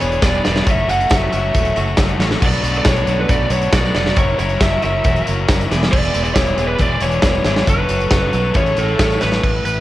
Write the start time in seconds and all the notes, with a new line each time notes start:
Already playing: B4 E5 G#5
0.00 E1 E3 B3 D4 G#4 B4 C#5, closed hi-hat, tambourine
0.12 closed hi-hat
0.22 E1 E3 B3 D4 G#4 B4 D5, kick, snare, closed hi-hat, tambourine
0.35 tambourine
0.44 E1 E3 B3 D4 G#4 B4, snare, closed hi-hat
0.48 D5
0.56 snare
0.66 F#1 F#3 A3 C#4 E4 F#4 A4 C#5 F#5 C#6, kick, closed hi-hat, tambourine
0.71 E5
0.78 tambourine
0.87 F#1 F#3 A3 C#4 E4 F#4 C#5 F#5, closed hi-hat, tambourine
1.00 closed hi-hat
1.09 F#1 F#3 A3 C#4 E4 F#4 C#5, kick, snare, closed hi-hat, tambourine
1.16 E5
1.21 tambourine
1.31 F#1 F#3 A3 C#4 E4 F#4 C#5, closed hi-hat, tambourine
1.37 E5
1.43 tambourine
1.53 E1 F#3 A3 C#4 E4 F#4 C#5, kick, closed hi-hat
1.65 closed hi-hat, tambourine
1.76 F#1 F#3 A3 C#4 E4 F#4 C#5, closed hi-hat, tambourine
1.88 tambourine
1.97 F#1 F#3 A3 C#4 E4 F#4 C#5, kick, snare, closed hi-hat, tambourine
2.09 closed hi-hat
2.19 A1 F#3 A3 C#4 E4 F#4 C#5, snare, closed hi-hat
2.31 snare
2.41 B1 B2 F#3 A3 B3 D4 F#4 A4 D5 B5, kick, crash, tambourine
2.46 D5
2.53 closed hi-hat, tambourine
2.63 B1 B2 F#3 A3 B3 D4 F#4 D5, closed hi-hat, tambourine
2.74 D5, closed hi-hat, tambourine
2.85 B1 B2 F#3 A3 B3 D4 F#4 C#5 D5, kick, snare, closed hi-hat, tambourine
2.96 closed hi-hat
3.07 B1 B2 F#3 A3 B3 D4 F#4 D5, closed hi-hat, tambourine
3.21 B4
3.28 B1 B2 F#3 A3 B3 D4 F#4 D5, kick, closed hi-hat, tambourine
3.41 tambourine
3.50 B1 B2 F#3 A3 B3 D4 F#4 C#5 D5, closed hi-hat, tambourine
3.62 closed hi-hat
3.71 B1 B2 F#3 A3 B3 D4 F#4 D5, kick, snare, closed hi-hat, tambourine
3.85 tambourine
3.94 F1 B2 F#3 A3 B3 D4 F#4 D5, snare, closed hi-hat
4.06 snare
4.16 F#1 F#3 C#4 E4 A#4 C#5 E5 C#6, kick, closed hi-hat, tambourine
4.28 tambourine
4.39 F#1 F#3 C#4 E4 A#4 C#5, closed hi-hat, tambourine
4.49 closed hi-hat, tambourine
4.60 F#1 F#3 C#4 E4 A#4 C#5 E5, kick, snare, closed hi-hat, tambourine
4.82 F#1 F#3 C#4 E4 A#4 C#5 E5, closed hi-hat, tambourine
5.04 E1 F#3 C#4 E4 A#4 C#5, kick, closed hi-hat, tambourine
5.16 closed hi-hat, tambourine
5.27 F#1 F#3 C#4 E4 A#4 C#5, closed hi-hat, tambourine
5.48 F#1 F#3 C#4 E4 A#4 C#5, kick, snare, closed hi-hat, tambourine
5.60 closed hi-hat, tambourine
5.69 E1 E3 G#3 B3 E4 G#4 B4 D5 G#5, snare, closed hi-hat
5.83 snare
5.92 E1 E3 G#3 B3 E4 G#4 D5, kick, crash, tambourine
6.04 closed hi-hat, tambourine
6.13 E1 E3 G#3 B3 E4 G#4 D5, closed hi-hat, tambourine
6.24 D5, closed hi-hat, tambourine
6.35 E1 E3 G#3 B3 E4 G#4 C#5 D5, kick, snare, closed hi-hat, tambourine
6.46 closed hi-hat
6.58 E1 E3 G#3 B3 E4 G#4 D5, closed hi-hat, tambourine
6.68 B4
6.78 E1 E3 G#3 B3 E4 G#4 D5, kick, closed hi-hat, tambourine
6.92 tambourine
7.00 E1 E3 G#3 B3 E4 G#4 C#5 D5, closed hi-hat, tambourine
7.11 closed hi-hat
7.22 E1 E3 G#3 B3 E4 G#4 D5, kick, snare, closed hi-hat, tambourine
7.35 tambourine
7.44 G#1 E3 G#3 B3 E4 G#4 D5, snare, closed hi-hat
7.56 snare
7.67 F#1 F#3 C#4 E4 F#4 A4 B4 C#5 F#5 C#6, kick, closed hi-hat, tambourine
7.78 tambourine
7.89 F#1 F#3 C#4 E4 F#4 A4 C#5, closed hi-hat, tambourine
8.01 closed hi-hat
8.11 F#1 F#3 C#4 E4 F#4 A4 C#5, kick, snare, closed hi-hat, tambourine
8.33 B1 F#3 C#4 E4 F#4 A4 C#5, closed hi-hat, tambourine
8.44 tambourine
8.54 A1 A3 C#4 E4 G#4 A4 C#5 G#5 C#6, kick, closed hi-hat, tambourine
8.66 closed hi-hat, tambourine
8.77 A1 A3 C#4 E4 G#4 A4 C#5, closed hi-hat
8.89 tambourine
8.99 A1 A3 C#4 E4 G#4 A4 C#5, kick, snare, closed hi-hat, tambourine
9.10 closed hi-hat, tambourine
9.21 A1 A3 C#4 E4 G#4 A4 B4 C#5, snare, closed hi-hat
9.32 snare
9.43 A1 A2, kick, crash
9.65 A1 B4, closed hi-hat